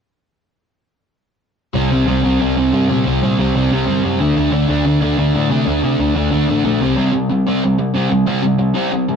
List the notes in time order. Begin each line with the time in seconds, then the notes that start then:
1.74 C2 C3 G3 C4
1.90 C2 C3 G3 C4
2.06 C2 C3 G3 C4
2.24 C2 C3 G3 C4
2.40 C2 C3 G3 C4
2.56 C2 C3 G3 C4
2.73 G2 C3 G3 C4
2.89 A#2 C3 G3 C4
3.05 C2 C3 G3 C4
3.23 A#2 C3 G3 C4
3.38 C2 C3 G3 C4
3.55 C2 C3 G3 C4
3.71 C2 C3 G3 C4
3.87 G1 C3 G3 C4
4.04 F#2 C3 G3 C4
4.20 D2 D3 A3 D4
4.35 D2 D3 A3 D4
4.51 D2 D3 A3 D4
4.68 D2 D3 A3 D4
4.85 D2 D3 A3 D4
5.01 D2 D3 A3 D4
5.18 D2 D3 A3 D4
5.35 A2 D3 A3 D4
5.50 C3 D3 A3 D4
5.66 D2 D3 A3 D4
5.82 C3 D3 A3 D4
5.99 D2 D3 A3 D4
6.15 D2 D3 A3 D4
6.32 D2 D3 A3 D4
6.49 A1 D3 A3 D4
6.65 A#1 D3 A3 D4
6.81 C2 C3 G3 C4
6.96 C3 G3 C4
7.12 C3 G3
7.29 C3 G3
7.47 C3 G3 C4
7.64 C3 G3
7.79 C3 G3
7.94 C3 G3 C4
8.10 C3 G3
8.26 C3 G3 C4
8.42 C3 G3
8.59 C3 G3
8.74 C3 G3 C4
8.92 C3 G3
9.09 C3 G3